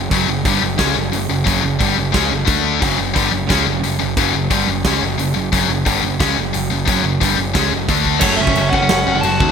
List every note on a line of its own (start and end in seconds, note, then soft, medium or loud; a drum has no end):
0.00 0.10 F#1 medium
0.09 0.27 F#1 medium
0.09 0.26 F#2 medium
0.09 0.26 C#3 medium
0.09 0.27 F#3 loud
0.09 kick medium
0.09 open hi-hat medium
0.27 0.44 F#1 medium
0.27 0.41 F#2 medium
0.27 0.41 C#3 medium
0.44 0.61 G1 loud
0.44 0.61 G2 medium
0.44 0.61 D3 loud
0.44 0.61 G3 loud
0.44 kick loud
0.44 open hi-hat medium
0.62 0.77 F#1 medium
0.62 0.75 F#2 medium
0.62 0.75 C#3 medium
0.77 0.95 C#2 medium
0.77 0.94 C#3 loud
0.77 0.94 G#3 medium
0.77 0.95 C#4 loud
0.77 kick medium
0.77 snare loud
0.77 open hi-hat medium
0.94 1.12 F#1 medium
0.94 1.08 F#2 medium
0.94 1.09 C#3 medium
1.12 1.29 F#1 medium
1.12 1.26 F#2 medium
1.12 1.26 C#3 medium
1.12 open hi-hat medium
1.29 1.45 F#1 medium
1.29 1.43 F#2 medium
1.29 1.43 C#3 medium
1.46 1.62 F#1 medium
1.46 1.61 F#2 loud
1.46 1.61 C#3 medium
1.46 1.63 F#3 medium
1.46 kick loud
1.46 open hi-hat medium
1.63 1.79 F#1 medium
1.63 1.76 F#2 medium
1.63 1.76 C#3 medium
1.80 1.96 G1 loud
1.80 1.96 G2 medium
1.80 1.97 D3 medium
1.80 1.97 G3 medium
1.80 kick loud
1.80 open hi-hat medium
1.97 2.13 F#1 medium
1.97 2.10 F#2 medium
1.97 2.11 C#3 medium
2.12 2.30 C#2 medium
2.12 2.29 C#3 medium
2.12 2.30 G#3 loud
2.12 2.30 C#4 loud
2.12 kick loud
2.12 snare loud
2.12 open hi-hat medium
2.30 2.47 F#1 medium
2.30 2.44 F#2 medium
2.30 2.44 C#3 medium
2.46 2.79 D2 medium
2.46 2.80 D3 medium
2.46 2.80 A3 loud
2.46 2.81 D4 loud
2.46 kick loud
2.46 open hi-hat medium
2.80 2.98 F#1 medium
2.80 2.96 F#2 medium
2.80 2.97 C#3 medium
2.80 2.98 F#3 medium
2.80 kick loud
2.80 open hi-hat medium
2.98 3.15 F#1 medium
2.98 3.12 F#2 medium
2.98 3.12 C#3 medium
3.13 3.32 G1 medium
3.13 3.31 G2 medium
3.13 3.31 D3 medium
3.13 3.31 G3 loud
3.13 kick medium
3.13 open hi-hat medium
3.31 3.49 F#1 medium
3.31 3.45 F#2 medium
3.31 3.45 C#3 medium
3.46 3.63 C#3 medium
3.46 3.64 G#3 loud
3.46 3.64 C#4 medium
3.46 kick medium
3.46 snare medium
3.46 open hi-hat soft
3.51 3.66 C#2 medium
3.64 3.82 F#1 medium
3.64 3.78 F#2 medium
3.64 3.79 C#3 medium
3.80 3.95 F#2 medium
3.80 3.95 C#3 medium
3.80 open hi-hat medium
3.85 3.99 F#1 medium
3.99 4.17 F#1 medium
3.99 4.13 F#2 medium
3.99 4.13 C#3 medium
4.17 4.33 F#1 medium
4.17 4.32 F#2 loud
4.17 4.32 C#3 medium
4.17 4.34 F#3 medium
4.17 kick loud
4.17 open hi-hat medium
4.33 4.50 F#1 medium
4.33 4.47 F#2 medium
4.33 4.47 C#3 medium
4.50 4.67 G1 medium
4.50 4.67 G2 medium
4.50 4.67 D3 medium
4.50 4.67 G3 medium
4.50 kick loud
4.50 open hi-hat medium
4.67 4.83 F#1 medium
4.67 4.81 F#2 medium
4.67 4.81 C#3 medium
4.84 5.00 C#2 medium
4.84 5.01 C#3 medium
4.84 5.01 G#3 loud
4.84 5.01 C#4 loud
4.84 kick medium
4.84 snare loud
4.84 open hi-hat medium
5.01 5.17 F#1 medium
5.01 5.15 F#2 medium
5.01 5.16 C#3 medium
5.18 5.34 F#1 medium
5.18 5.32 F#2 medium
5.18 5.33 C#3 medium
5.18 open hi-hat medium
5.35 5.51 F#1 medium
5.35 5.49 F#2 medium
5.35 5.49 C#3 medium
5.53 5.68 F#1 medium
5.53 5.69 F#2 loud
5.53 5.69 C#3 loud
5.53 5.69 F#3 loud
5.53 kick medium
5.53 open hi-hat medium
5.68 5.84 F#1 medium
5.68 5.83 F#2 medium
5.68 5.83 C#3 medium
5.86 6.02 G1 loud
5.86 6.03 G2 medium
5.86 6.03 D3 loud
5.86 6.03 G3 medium
5.86 kick loud
5.86 open hi-hat medium
6.03 6.19 F#1 medium
6.03 6.16 F#2 medium
6.03 6.17 C#3 medium
6.20 6.36 C#2 medium
6.20 6.37 C#3 loud
6.20 6.37 G#3 loud
6.20 6.36 C#4 loud
6.20 kick loud
6.20 snare loud
6.20 open hi-hat medium
6.37 6.53 F#1 medium
6.37 6.50 F#2 medium
6.37 6.51 C#3 medium
6.54 6.70 F#1 medium
6.54 6.68 F#2 medium
6.54 6.68 C#3 medium
6.54 open hi-hat medium
6.71 6.86 F#1 medium
6.71 6.85 F#2 medium
6.71 6.86 C#3 medium
6.86 7.03 F#1 medium
6.86 7.02 F#2 loud
6.86 7.02 C#3 medium
6.86 7.04 F#3 medium
6.86 kick loud
6.86 open hi-hat medium
7.03 7.20 F#1 medium
7.03 7.18 F#2 medium
7.03 7.17 C#3 medium
7.20 7.37 G1 medium
7.20 7.36 G2 loud
7.20 7.36 D3 medium
7.20 7.37 G3 loud
7.20 kick loud
7.20 open hi-hat medium
7.37 7.54 F#1 medium
7.37 7.51 F#2 medium
7.37 7.51 C#3 medium
7.54 7.71 C#2 medium
7.54 7.71 C#3 medium
7.54 7.71 G#3 loud
7.54 7.72 C#4 loud
7.54 kick loud
7.54 snare loud
7.54 open hi-hat medium
7.71 7.87 F#1 medium
7.71 7.86 F#2 medium
7.71 7.85 C#3 medium
7.88 8.20 D2 medium
7.88 8.21 D3 loud
7.88 8.21 A3 medium
7.88 8.23 D4 loud
7.88 kick loud
7.88 open hi-hat medium
8.05 kick medium
8.20 8.38 F#1 medium
8.20 8.37 F#2 medium
8.20 8.37 C#3 loud
8.20 8.38 F#3 loud
8.20 9.52 F#3 medium
8.20 8.38 A3 medium
8.20 9.52 C#4 medium
8.20 9.52 A4 medium
8.20 8.39 C#5 loud
8.20 kick loud
8.20 crash loud
8.20 crash medium
8.37 8.55 F#1 medium
8.37 8.47 F#2 medium
8.37 8.46 C#3 medium
8.37 8.70 E5 loud
8.42 8.72 C#4 medium
8.47 8.55 F#2 medium
8.47 8.55 C#3 medium
8.47 kick medium
8.55 8.72 F#1 loud
8.55 8.71 F#2 medium
8.55 8.71 C#3 medium
8.55 crash medium
8.70 8.89 F#1 medium
8.70 8.80 F#2 medium
8.70 8.80 C#3 medium
8.70 9.24 F#5 medium
8.70 kick medium
8.75 9.21 C#4 loud
8.81 8.87 F#2 medium
8.81 8.89 C#3 loud
8.89 9.06 F#1 medium
8.89 9.05 F#2 medium
8.89 9.05 C#3 medium
8.89 snare loud
8.89 crash medium
9.06 9.22 F#1 loud
9.06 9.13 F#2 medium
9.06 9.13 C#3 medium
9.14 9.22 F#2 medium
9.14 9.22 C#3 medium
9.21 9.39 F#1 loud
9.21 9.39 F#2 medium
9.21 9.39 C#3 loud
9.21 9.52 A5 loud
9.21 crash medium
9.26 9.52 F#4 medium
9.40 9.52 D#2 medium
9.40 9.48 F#2 medium
9.40 9.48 C#3 medium
9.40 kick loud